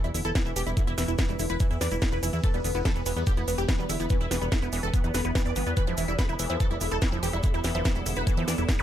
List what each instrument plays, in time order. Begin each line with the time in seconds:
Already playing: ambient pad B3 B4, impact
0.04 analog synth bass E1, synth arpeggio sound G3, supersaw synth E4, closed hi-hat, maracas
0.14 analog synth bass E1, synth arpeggio sound D3, supersaw synth E4, open hi-hat, maracas
0.24 analog synth bass E1, synth arpeggio sound E4, supersaw synth A4, maracas
0.35 synth arpeggio sound E3, supersaw synth E4, kick, snare, closed hi-hat, maracas
0.46 analog synth bass E1, synth arpeggio sound E3, supersaw synth E4, maracas
0.56 analog synth bass E1, synth arpeggio sound E3, supersaw synth G4, open hi-hat, maracas
0.67 analog synth bass E1, synth arpeggio sound G3, supersaw synth E4, maracas
0.77 synth arpeggio sound D3, supersaw synth E4, kick, closed hi-hat, maracas
0.87 analog synth bass E1, supersaw synth E4, synth arpeggio sound E4, closed hi-hat, maracas
0.98 analog synth bass E1, synth arpeggio sound E3, supersaw synth E4, snare, open hi-hat, maracas
1.08 analog synth bass E1, synth arpeggio sound E3, supersaw synth E4, closed hi-hat, maracas
1.18 synth arpeggio sound E3, supersaw synth E4, kick, snare, closed hi-hat, maracas
1.29 analog synth bass E1, synth arpeggio sound G3, supersaw synth E4, closed hi-hat, maracas
1.39 analog synth bass E1, synth arpeggio sound D3, supersaw synth E4, open hi-hat, maracas
1.49 analog synth bass E1, synth arpeggio sound E4, supersaw synth B4, closed hi-hat, maracas
1.60 synth arpeggio sound E3, supersaw synth E4, kick, closed hi-hat, maracas
1.71 analog synth bass E2, synth arpeggio sound E3, supersaw synth E4, closed hi-hat, maracas
1.81 analog synth bass E2, synth arpeggio sound E3, supersaw synth D5, snare, open hi-hat, maracas
1.91 analog synth bass E1, synth arpeggio sound G3, supersaw synth E4, closed hi-hat, maracas
2.02 synth arpeggio sound D3, supersaw synth E4, kick, snare, closed hi-hat, maracas
2.12 analog synth bass E1, synth arpeggio sound E4, supersaw synth B4, maracas
2.23 analog synth bass F1, synth arpeggio sound E3, supersaw synth E4, open hi-hat, maracas
2.33 analog synth bass E2, synth arpeggio sound E3, supersaw synth E4, closed hi-hat, maracas
2.44 synth arpeggio sound E3, supersaw synth A4, kick, closed hi-hat, maracas
2.54 analog synth bass E1, synth arpeggio sound G3, supersaw synth B3, closed hi-hat, maracas
2.64 analog synth bass E1, synth arpeggio sound D3, supersaw synth B3, open hi-hat, maracas
2.75 analog synth bass E1, supersaw synth B3, synth arpeggio sound E4, closed hi-hat, maracas
2.85 synth arpeggio sound E3, supersaw synth A4, kick, snare, closed hi-hat, maracas
2.96 analog synth bass E1, synth arpeggio sound E3, supersaw synth B3, closed hi-hat, maracas
3.06 analog synth bass E1, synth arpeggio sound E3, supersaw synth B3, open hi-hat, maracas
3.17 analog synth bass E2, synth arpeggio sound G3, supersaw synth B3, maracas
3.27 synth arpeggio sound D3, supersaw synth G4, kick, closed hi-hat, maracas
3.37 analog synth bass E1, supersaw synth B3, synth arpeggio sound E4, closed hi-hat, maracas
3.48 analog synth bass E1, synth arpeggio sound E3, supersaw synth B3, open hi-hat, maracas
3.58 analog synth bass E1, synth arpeggio sound E3, supersaw synth G4, closed hi-hat, maracas
3.69 synth arpeggio sound E3, supersaw synth B3, kick, snare, closed hi-hat, maracas
3.79 analog synth bass E1, synth arpeggio sound G3, supersaw synth B3, maracas
3.89 analog synth bass E1, synth arpeggio sound D3, supersaw synth E4, open hi-hat, maracas
4.00 analog synth bass E1, supersaw synth B3, synth arpeggio sound E4, closed hi-hat, maracas
4.10 synth arpeggio sound E3, supersaw synth B3, kick, closed hi-hat, maracas
4.21 analog synth bass E1, synth arpeggio sound E3, supersaw synth E4, closed hi-hat, maracas
4.31 analog synth bass E1, synth arpeggio sound E3, supersaw synth B3, snare, open hi-hat, maracas
4.41 analog synth bass E1, synth arpeggio sound G3, supersaw synth B3, closed hi-hat, maracas
4.52 synth arpeggio sound D3, supersaw synth E4, kick, snare, closed hi-hat, maracas
4.62 analog synth bass E1, supersaw synth B3, synth arpeggio sound E4, closed hi-hat, maracas
4.72 analog synth bass E1, synth arpeggio sound E3, supersaw synth B3, open hi-hat, maracas
4.83 analog synth bass E1, synth arpeggio sound E3, supersaw synth A4, maracas
4.94 synth arpeggio sound E3, supersaw synth B3, kick, closed hi-hat, maracas
5.04 analog synth bass E2, synth arpeggio sound G3, supersaw synth B3, closed hi-hat, maracas
5.14 analog synth bass E1, synth arpeggio sound D3, supersaw synth B4, snare, open hi-hat, maracas
5.25 analog synth bass E1, supersaw synth B3, synth arpeggio sound E4, maracas
5.35 synth arpeggio sound E3, supersaw synth B3, kick, snare, closed hi-hat, maracas
5.46 analog synth bass E2, synth arpeggio sound E3, supersaw synth D5, closed hi-hat, maracas
5.56 analog synth bass G1, synth arpeggio sound E3, supersaw synth B3, open hi-hat, maracas
5.67 analog synth bass E2, synth arpeggio sound G3, supersaw synth B3, closed hi-hat, maracas
5.77 synth arpeggio sound E3, ambient pad A4, supersaw synth B4, kick, closed hi-hat, maracas
5.87 analog synth bass E1, synth arpeggio sound F3, supersaw synth E4, closed hi-hat, maracas
5.97 analog synth bass E1, synth arpeggio sound E3, supersaw synth E4, open hi-hat, maracas
6.08 analog synth bass E1, synth arpeggio sound G3, supersaw synth E4, closed hi-hat, maracas
6.19 synth arpeggio sound D3, supersaw synth B4, kick, snare, closed hi-hat, maracas
6.29 analog synth bass E1, synth arpeggio sound E4, supersaw synth E4, closed hi-hat, maracas
6.39 analog synth bass E1, synth arpeggio sound E3, supersaw synth E4, open hi-hat, maracas
6.49 analog synth bass E2, synth arpeggio sound F3, supersaw synth E4, maracas
6.60 synth arpeggio sound E3, supersaw synth A4, kick, closed hi-hat, maracas
6.71 analog synth bass E1, synth arpeggio sound G3, supersaw synth E4, closed hi-hat, maracas
6.81 analog synth bass E1, synth arpeggio sound D3, supersaw synth E4, open hi-hat, maracas
6.91 analog synth bass E1, synth arpeggio sound E4, supersaw synth A4, maracas
7.02 synth arpeggio sound E3, supersaw synth E4, kick, snare, closed hi-hat, maracas
7.12 analog synth bass E1, synth arpeggio sound F3, supersaw synth E4, maracas
7.23 analog synth bass E1, synth arpeggio sound E3, supersaw synth G4, open hi-hat, maracas
7.33 analog synth bass E1, synth arpeggio sound G3, supersaw synth E4, maracas
7.43 synth arpeggio sound D3, supersaw synth E4, kick, closed hi-hat, maracas
7.54 analog synth bass E1, synth arpeggio sound E4, supersaw synth E4, closed hi-hat, maracas
7.64 analog synth bass E1, synth arpeggio sound E3, supersaw synth E4, snare, open hi-hat, maracas
7.75 analog synth bass E1, synth arpeggio sound F3, supersaw synth E4, maracas
7.85 synth arpeggio sound E3, supersaw synth E4, kick, snare, closed hi-hat, maracas
7.95 analog synth bass E1, synth arpeggio sound G3, supersaw synth E4, closed hi-hat, maracas
8.06 analog synth bass E1, synth arpeggio sound D3, supersaw synth E4, open hi-hat, maracas
8.16 analog synth bass E1, synth arpeggio sound E4, supersaw synth B4, maracas
8.27 synth arpeggio sound E3, supersaw synth E4, kick, closed hi-hat, maracas
8.37 analog synth bass E2, synth arpeggio sound F3, supersaw synth E4, closed hi-hat, maracas
8.48 analog synth bass E2, synth arpeggio sound E3, supersaw synth D5, snare, open hi-hat, maracas
8.58 analog synth bass E1, synth arpeggio sound G3, supersaw synth E4, closed hi-hat, maracas
8.69 synth arpeggio sound D3, supersaw synth E4, kick, snare, closed hi-hat, maracas
8.79 analog synth bass E1, synth arpeggio sound E4, supersaw synth B4, zap, maracas